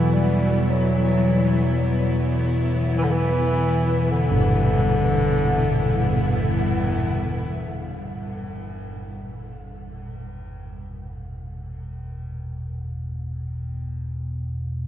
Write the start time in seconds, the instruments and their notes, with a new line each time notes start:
Already playing: synth drone E2 B2, bass clarinet E3, cello section E3 B3 E4, church bells F#4
0.14 bass clarinet G3
0.71 bass clarinet F#3
2.98 bass clarinet E3
3.04 bass clarinet D3
3.11 bass clarinet E3
4.11 bass clarinet D3
4.31 church bells G2
7.62 synth drone E2 B2